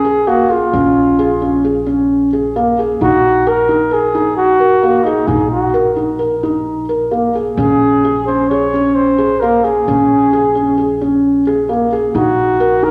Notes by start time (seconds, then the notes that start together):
Already playing: A#1 G#4
0.05 G#4
0.27 A#3 F#4
0.50 F4 G#4
0.73 A#1 C#4
1.19 G#4
1.42 C#4
1.65 G#4
1.86 C#4
2.33 G#4
2.56 A#3
2.79 G#4
3.01 A#1 D#4 F#4
3.47 A#4
3.69 D#4
3.91 G#4 A#4
4.15 D#4
4.37 F#4
4.60 A#4
4.83 A#3
5.04 D#4 G#4
5.27 A#1 D#4 G#4
5.51 F#4
5.74 A#4
5.96 D#4
6.19 A#4
6.43 D#4
6.89 A#4
7.11 A#3
7.35 G#4
7.57 A#1 C#4 G#4
8.05 G#4
8.26 C#4 C5
8.49 G#4 C#5
8.74 C#4
8.95 C5
9.18 G#4
9.40 A#3 A#4
9.64 G#4
9.88 A#1 C#4
10.33 G#4
10.55 C#4
10.78 G#4
11.01 C#4
11.47 G#4
11.69 A#3
11.93 G#4
12.14 A#1 D#4 F#4
12.60 A#4
12.82 D#4 A#4